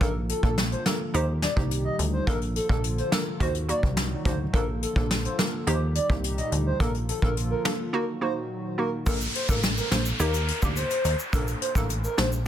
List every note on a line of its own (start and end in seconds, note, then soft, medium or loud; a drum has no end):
0.01 0.33 A#1 loud
0.01 1.13 D3 medium
0.01 1.13 F3 medium
0.01 0.40 A#3 medium
0.01 1.13 A#3 medium
0.01 0.40 D4 medium
0.01 1.13 F4 medium
0.01 1.13 A4 medium
0.01 0.40 A4 loud
0.01 0.13 A#4 loud
0.01 kick loud
0.01 closed hi-hat medium
0.29 0.41 A4 medium
0.29 closed hi-hat medium
0.43 0.75 A#1 medium
0.43 0.82 A#3 medium
0.43 0.82 D4 medium
0.43 0.55 A4 medium
0.43 0.83 A4 medium
0.43 kick medium
0.57 snare loud
0.57 closed hi-hat medium
0.72 0.83 C5 medium
0.72 closed hi-hat soft
0.86 1.12 A#3 medium
0.86 1.12 D4 medium
0.86 1.12 A4 medium
0.86 0.97 A#4 medium
0.86 snare loud
0.86 closed hi-hat medium
1.14 1.46 D#2 loud
1.14 2.26 A#2 medium
1.14 2.26 D#3 medium
1.14 2.26 G3 medium
1.14 1.32 A#3 medium
1.14 2.26 D#4 medium
1.14 1.32 D#4 medium
1.14 2.26 G4 medium
1.14 1.32 G4 loud
1.14 1.26 C5 medium
1.14 closed hi-hat medium
1.42 1.54 D5 medium
1.42 snare medium
1.42 closed hi-hat medium
1.56 1.89 C2 medium
1.56 1.74 A#3 medium
1.56 1.74 D#4 medium
1.56 1.75 G4 medium
1.56 kick medium
1.71 closed hi-hat medium
1.85 1.96 D#5 medium
1.99 2.20 D2 medium
1.99 closed hi-hat medium
2.13 2.25 C5 medium
2.27 2.59 A#1 loud
2.27 3.39 D3 medium
2.27 3.39 F3 medium
2.27 2.66 A#3 medium
2.27 3.39 A#3 medium
2.27 2.66 D4 medium
2.27 3.39 F4 medium
2.27 3.39 A4 medium
2.27 2.67 A4 loud
2.27 2.39 A#4 loud
2.27 kick loud
2.27 closed hi-hat medium
2.41 closed hi-hat soft
2.56 2.67 A4 medium
2.56 closed hi-hat medium
2.69 3.02 A#1 loud
2.69 2.87 A#3 medium
2.69 2.87 D4 medium
2.69 2.88 A4 medium
2.69 2.82 A4 medium
2.69 kick medium
2.84 closed hi-hat medium
2.98 3.10 C5 medium
2.98 closed hi-hat soft
3.12 3.30 A#3 medium
3.12 3.30 D4 medium
3.12 3.30 A4 medium
3.12 3.24 A#4 medium
3.12 snare loud
3.12 closed hi-hat medium
3.40 3.73 D#2 loud
3.40 4.53 A#2 medium
3.40 4.53 D#3 medium
3.40 4.53 F#3 medium
3.40 3.66 A#3 medium
3.40 3.66 D#4 medium
3.40 4.53 D#4 medium
3.40 4.53 F#4 medium
3.40 3.67 F#4 loud
3.40 3.52 C5 medium
3.40 kick medium
3.40 closed hi-hat medium
3.55 closed hi-hat medium
3.69 3.86 A#3 medium
3.69 3.87 D#4 medium
3.69 3.87 F#4 medium
3.69 3.81 D5 medium
3.69 closed hi-hat medium
3.83 4.15 C2 medium
3.83 kick medium
3.97 snare loud
3.97 closed hi-hat medium
4.25 4.47 D2 medium
4.25 4.43 A#3 medium
4.25 4.43 D#4 medium
4.25 4.43 F#4 medium
4.25 4.37 C5 medium
4.25 kick loud
4.25 closed hi-hat medium
4.53 4.86 A#1 loud
4.53 5.66 D3 medium
4.53 5.66 F3 medium
4.53 4.93 A#3 medium
4.53 5.66 A#3 medium
4.53 4.93 D4 medium
4.53 5.66 F4 medium
4.53 5.66 A4 medium
4.53 4.93 A4 loud
4.53 4.65 A#4 loud
4.53 kick loud
4.53 closed hi-hat medium
4.82 4.94 A4 medium
4.82 closed hi-hat medium
4.96 5.28 A#1 medium
4.96 5.35 A#3 medium
4.96 5.35 D4 medium
4.96 5.08 A4 medium
4.96 5.36 A4 medium
4.96 kick medium
5.10 snare loud
5.10 closed hi-hat medium
5.25 5.36 C5 medium
5.25 closed hi-hat medium
5.38 5.65 A#3 medium
5.38 5.65 D4 medium
5.38 5.65 A4 medium
5.38 5.50 A#4 medium
5.38 snare loud
5.38 closed hi-hat medium
5.67 5.99 D#2 loud
5.67 6.79 A#2 medium
5.67 6.79 D#3 medium
5.67 6.79 G3 medium
5.67 5.85 A#3 medium
5.67 5.85 D#4 medium
5.67 6.79 D#4 medium
5.67 6.79 G4 medium
5.67 5.85 G4 loud
5.67 5.79 C5 medium
5.67 closed hi-hat medium
5.95 6.07 D5 medium
5.95 closed hi-hat medium
6.09 6.42 C2 medium
6.09 6.27 A#3 medium
6.09 6.27 D#4 medium
6.09 6.27 G4 medium
6.09 kick medium
6.24 closed hi-hat medium
6.37 6.49 D#5 medium
6.37 closed hi-hat medium
6.52 6.73 D2 medium
6.52 closed hi-hat medium
6.66 6.78 C5 medium
6.80 7.12 A#1 loud
6.80 7.92 D3 medium
6.80 7.92 F3 medium
6.80 7.92 A#3 medium
6.80 7.19 A#3 medium
6.80 7.19 D4 medium
6.80 7.92 F4 medium
6.80 7.92 A4 medium
6.80 7.19 A4 loud
6.80 6.92 A#4 loud
6.80 kick loud
6.80 closed hi-hat medium
6.94 closed hi-hat soft
7.08 7.20 A4 medium
7.08 closed hi-hat medium
7.22 7.55 A#1 loud
7.22 7.40 A#3 medium
7.22 7.40 D4 medium
7.22 7.41 A4 medium
7.22 7.34 A#4 medium
7.22 kick medium
7.37 closed hi-hat medium
7.51 7.62 A#4 medium
7.65 7.83 A#3 medium
7.65 7.83 D4 medium
7.65 7.77 A4 medium
7.65 7.83 A4 medium
7.65 snare loud
7.65 closed hi-hat medium
7.93 9.05 A#2 medium
7.93 9.05 D#3 medium
7.93 9.05 F#3 medium
7.93 8.19 A#3 loud
7.93 9.05 D#4 medium
7.93 8.19 D#4 medium
7.93 9.05 F#4 medium
7.93 8.20 F#4 loud
7.93 8.05 A#4 medium
8.21 8.39 A#3 medium
8.21 8.39 D#4 medium
8.21 8.40 F#4 medium
8.21 8.33 C5 medium
8.78 8.96 A#3 medium
8.78 8.96 D#4 medium
8.78 8.96 F#4 medium
8.78 8.90 A#4 medium
9.06 9.28 A#1 loud
9.06 9.45 A#3 medium
9.06 9.46 D4 medium
9.06 9.46 A4 loud
9.06 9.18 A#4 loud
9.06 kick loud
9.06 closed hi-hat medium
9.06 downlifter medium
9.06 shaker medium
9.21 shaker medium
9.35 9.47 C5 medium
9.35 closed hi-hat medium
9.49 9.81 A1 medium
9.49 9.88 A#3 medium
9.49 9.88 D4 medium
9.49 9.88 A4 medium
9.49 9.60 A#4 medium
9.49 kick medium
9.49 shaker medium
9.63 snare loud
9.63 closed hi-hat medium
9.63 shaker medium
9.77 9.89 A#4 medium
9.77 closed hi-hat medium
9.77 shaker medium
9.91 10.13 A#1 medium
9.91 10.17 A#3 medium
9.91 10.18 D4 medium
9.91 10.18 A4 medium
9.91 10.03 C5 medium
9.91 snare loud
9.91 closed hi-hat medium
9.91 shaker medium
10.05 shaker medium
10.20 10.52 D#2 loud
10.20 10.37 A#3 loud
10.20 10.38 D#4 medium
10.20 10.38 G4 loud
10.20 10.60 A#4 loud
10.20 closed hi-hat medium
10.20 shaker medium
10.34 closed hi-hat medium
10.34 shaker medium
10.48 closed hi-hat medium
10.62 10.84 D2 medium
10.62 10.80 A#3 medium
10.62 10.80 D#4 medium
10.62 10.80 G4 medium
10.62 kick medium
10.62 shaker medium
10.76 11.16 C5 medium
10.76 closed hi-hat medium
10.76 shaker medium
10.90 closed hi-hat medium
10.90 shaker medium
11.05 11.15 D#2 medium
11.05 closed hi-hat medium
11.05 shaker medium
11.19 shaker medium
11.33 11.54 A#1 loud
11.33 11.72 A#3 loud
11.33 11.72 D4 medium
11.33 11.72 A4 loud
11.33 11.45 A#4 loud
11.33 kick loud
11.33 closed hi-hat medium
11.33 shaker medium
11.47 closed hi-hat soft
11.47 shaker medium
11.61 11.73 C5 medium
11.61 closed hi-hat medium
11.75 12.07 A1 loud
11.75 11.93 A#3 medium
11.75 11.93 D4 medium
11.75 11.93 A4 medium
11.75 11.87 A#4 medium
11.75 kick medium
11.75 shaker medium
11.90 closed hi-hat medium
11.90 shaker medium
12.04 12.15 A#4 medium
12.04 shaker medium
12.18 12.47 A#1 medium
12.18 12.36 A#3 medium
12.18 12.36 D4 medium
12.18 12.36 A4 medium
12.18 12.29 C5 medium
12.18 snare loud
12.18 closed hi-hat medium
12.18 high timbale medium
12.18 shaker medium
12.32 shaker medium